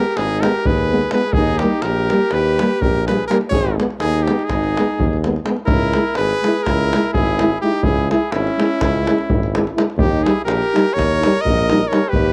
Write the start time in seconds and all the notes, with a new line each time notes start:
Already playing: G4 A#4
0.17 G#1 D#4 G#4, davul high
0.41 G#3 B3 G4 A#4, davul high
0.65 D#2 G#4 B4, davul low
0.78 davul high
0.91 G#3 B3
1.01 davul high
1.11 G#3 B3 G#4 B4, davul high
1.22 davul high
1.33 D#2 D#4 G#4, davul low
1.47 davul high
1.58 A#3 G4, davul high
1.62 G3 D#4
1.82 A#1 G4 A#4, davul high
2.10 G3 A#3, davul high
2.31 D#2 G4 B4, davul high
2.59 G3 A#3, davul high
2.81 A#1 G4 A#4, davul low
2.96 davul high
3.05 A#3 G#4 B4, davul high
3.09 G3
3.19 davul high
3.28 G3 A#3 G4 A#4, davul high
3.41 davul high
3.49 G#1 G#4 C#5, davul low
3.67 davul high
3.78 G#3 B3, davul high
3.90 davul high
4.00 D#2 D#4 G#4, davul high
4.14 davul high
4.23 B3 D#4 G4
4.28 G#3, davul high
4.39 davul high
4.44 D#4 G#4
4.50 G#1, davul high, davul low
4.64 davul high
4.77 G#3 B3, davul high
4.99 D#2, davul low
5.13 davul high
5.24 G#3 B3, davul high
5.36 davul high
5.46 G#3 B3, davul high
5.57 davul high
5.65 C#2 E4 A#4, davul low
5.93 G#3 E4, davul high
6.15 G#1 G#4 B4, davul high
6.30 davul high
6.43 G#3 E4, davul high
6.63 A#4, davul high, davul low
6.68 C#2 E4
6.81 davul high
6.93 G#3 E4, davul high
7.04 davul high
7.13 G#1 E4 G#4, davul low
7.27 davul high
7.39 G#3 E4, davul high
7.61 G#3 D#4 E4 G4
7.72 davul high
7.83 C#2 E4 G#4, davul low
8.11 G#3 E4 G#4, davul high
8.32 G#1 C#4 E4, davul high
8.47 davul high
8.59 G#3 E4, davul high
8.81 C#2, davul high, davul low
8.95 davul high
9.07 G#3 E4, davul high
9.18 davul high
9.30 G#1, davul low
9.43 davul high
9.55 G#3 E4, davul high
9.67 davul high
9.74 G#3 E4, davul high
9.90 davul high
9.97 D#2 D#4 G4, davul low
10.23 G3 D#4 E4 G#4, davul high
10.45 A#1 G4 A#4, davul high
10.62 davul high
10.74 G3 D#4, davul high
10.93 D#2 A#4 C#5
10.99 davul high, davul low
11.11 davul high
11.21 D#4, davul high
11.27 G3
11.35 davul high
11.40 A#4 D#5
11.45 A#1, davul low
11.58 davul high
11.70 G3 D#4, davul high
11.81 davul high
11.87 A#4 C#5
11.91 G3 D#4, davul high
12.03 davul high
12.08 G4 B4
12.13 D#2, davul low
12.27 davul high